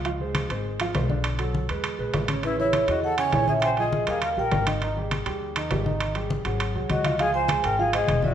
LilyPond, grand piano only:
\new Staff \with { instrumentName = "Grand piano" } { \time 4/4 \key des \lydian \tempo 4 = 202 <f f' f''>8 <aes aes' c''>4 <aes aes' c''>4 <f f' f''>8 <aes aes' c''>8 <d d' d''>8~ | <d d' d''>8 <fis fis' a'>4 <aes aes' b'>4 <gis gis' b'>4 <des des' des''>8 | <cis cis' cis''>8 <e e' gis'>4 <e e' gis'>4 <cis cis' cis''>8 <e e' gis'>8 <cis cis' cis''>8~ | <cis cis' cis''>8 <f f' aes'>4 <g g' bes'>4 <g g' bes'>4 <ees ees' ees''>8 |
<ees ees' ees''>8 <g g' aes'>4 <g g' aes'>4 <ees ees' ees''>8 <g g' aes'>8 <ees ees' ees''>8~ | <ees ees' ees''>8 <g g' aes'>4 <ges ges' aes'>4 <ges ges' aes'>4 <f f' f''>8 | <f f' f''>4 <aes aes' c''>4 <f f' f''>8 <aes aes' c''>4 <fes fes' fes''>8 | }